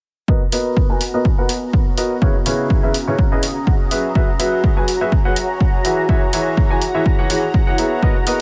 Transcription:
0.28 B3 F#4 A#4 B4 D#5 A#5, kick
0.52 B3 F#4 A#4 B4 D#5, open hi-hat
0.77 kick
0.90 B3 F#4 A#4 B4 G#5
1.01 open hi-hat
1.14 B3 F#4 A#4 B4 C#5 D#5
1.25 kick
1.38 B3 F#4 A#4 B4 F#5
1.49 open hi-hat
1.73 kick
1.98 F#4 A#4 B4 D#5, open hi-hat
2.22 C#3 C#4 E4 G#4 B4 C#5, kick
2.46 C#3 E4 G#4 B4 C#5, open hi-hat
2.70 kick
2.83 C#3 E4 G#4 B4 E5
2.91 G#4 D#6, open hi-hat
3.07 C#3 E4 G#4 B4 C#5
3.19 kick
3.32 C#3 E4 G#4 B4 D#5
3.43 open hi-hat
3.67 kick
3.91 F#3 F#4 G#4 B4 E5, open hi-hat
4.15 F#3 F#4 G#4 B4 E5, kick
4.20 C#5
4.39 F#3 F#4 G#4 B4 E5, open hi-hat
4.49 G#5
4.64 kick
4.77 F#3 F#4 G#4 B4 G#5
4.88 open hi-hat
5.01 F#3 F#4 G#4 B4 E5
5.12 kick
5.25 F#3 F#4 G#4 B4 F#5
5.36 open hi-hat
5.61 kick
5.85 E3 F#4 G#4 B4 E5, open hi-hat
6.09 E3 E4 F#4 G#4 C#5 E5, kick
6.26 G#4
6.33 E3 F#4 G#4 C#5 E5, open hi-hat
6.57 kick
6.70 E3 F#4 G#4 C#5 G#5
6.82 open hi-hat
6.95 E3 F#4 G#4 C#5 E5 F#5
7.06 kick
7.19 E3 F#4 G#4 C#5 F#5
7.30 E3 F#4 G#4 C#5 F#5, open hi-hat
7.54 kick
7.67 E3 F#4 G#4 C#5 F#5
7.78 B3 F#4 G#4 C#5 E5, open hi-hat
8.02 B3 F#4 A#4 B4 D#5, kick
8.27 B3 F#4 A#4 B4 D#5, open hi-hat

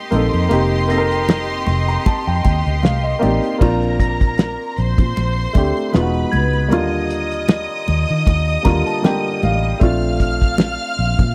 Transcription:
Already playing: G4 D#5 C6 D#6 C7
0.11 A#1 A#3 C4 D#4 A4, closed hi-hat, high conga
0.33 F2, closed hi-hat
0.49 F1 A#3 C4 D#4 G4, closed hi-hat, muted conga
0.88 A#3 C4 D#4 A4 A#6, closed hi-hat
0.98 A#4
1.11 closed hi-hat
1.28 snare, closed hi-hat, high conga
1.66 F1 C6, closed hi-hat, muted conga
1.88 A#5, closed hi-hat
2.06 A5, kick, closed hi-hat, muted conga
2.27 F2 G5, closed hi-hat
2.44 D#2 G5, kick, closed hi-hat, muted conga
2.67 D2, closed hi-hat
2.83 C2 F5, snare, closed hi-hat, high conga
3.04 D#5
3.19 A#3 C4 D#4 G4 D5, closed hi-hat, high conga
3.23 A1
3.43 closed hi-hat
3.58 A#1 A#3 C4 D4 F4 A#4 A#5, kick, crash, muted conga
3.82 closed hi-hat
3.99 A#6, kick, closed hi-hat
4.21 kick, closed hi-hat
4.38 snare, closed hi-hat, high conga
4.78 A#1 C5 C6, closed hi-hat
4.98 A#2, kick, closed hi-hat, low conga
5.16 A#1, closed hi-hat, muted conga
5.53 D2 A3 C4 D4, kick, closed hi-hat, muted conga
5.57 G4
5.77 closed hi-hat
5.92 E1 G#3 B3 D#4 F4 B4 B5, snare, closed hi-hat, high conga
6.02 F#4
6.14 closed hi-hat
6.32 C#2 G#6, closed hi-hat, high conga
6.53 closed hi-hat
6.68 D#2 D3 G3 A#3 D#5 D#6, closed hi-hat, muted conga
6.73 F4
7.10 closed hi-hat
7.31 closed hi-hat
7.48 snare, closed hi-hat, high conga
7.88 D#2, closed hi-hat, muted conga
8.08 D#3, closed hi-hat
8.26 D#2, kick, closed hi-hat, muted conga
8.48 closed hi-hat
8.63 D#2 D3 G3 A#3 A#5, kick, snare, closed hi-hat, muted conga
8.67 F4
8.86 A5, closed hi-hat
9.02 D3 G3 A#3 G5, snare, closed hi-hat, high conga
9.06 G4
9.42 A1 F5, closed hi-hat, high conga
9.63 closed hi-hat
9.80 A#1 A3 C4 D4 F4 F5 F6, kick, closed hi-hat, muted conga
10.02 closed hi-hat
10.20 F6, kick, closed hi-hat
10.42 kick, closed hi-hat
10.58 snare, closed hi-hat, high conga
10.98 A#1, closed hi-hat
11.19 A#2, kick, closed hi-hat, low conga

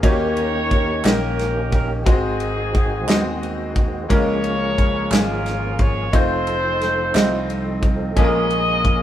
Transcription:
0.02 D#2 D#3 A#3 C#4 D#4 F4 F#4 G4 A#4 C#5, kick, ride
0.09 G4
0.37 ride
0.71 kick, ride
1.04 A#1 A#3 C#4 D#4 G4 A#4 D#5, snare, clap, ride
1.39 snare, ride
1.72 A#4, kick, ride
2.05 G#1 G#2 D#3 G#3 C4 D#4 F#4 C5, kick, ride
2.10 C4 D#4 G#4
2.40 ride
2.75 kick, ride
3.07 D#2 G#3 B3 D#4 F#4 D#5, snare, clap, ride
3.14 C4
3.43 ride
3.76 kick, ride
4.09 C#2 C#3 F3 G#3 A#3 C#4 F4 G#4 A#4 C#5, kick, ride
4.44 ride
4.78 kick, ride
5.10 G#1 G#3 A#3 C#4 F4 G#4 A#4, snare, clap, ride
5.46 snare, ride
5.79 C#5, kick, ride
6.12 F1 F3 A3 C4 D#4 F4 F#4 C5, kick, ride
6.16 D#4 A4
6.47 ride
6.81 snare, ride
7.14 C2 A3 C4 D#4 F4 D#5, snare, clap, ride
7.50 ride
7.83 kick, ride
8.15 A#1 A#2 F3 G#3 A#3 C#4 F4 G#4 A4 D#5, kick, ride
8.24 A#4
8.51 ride
8.85 kick, ride

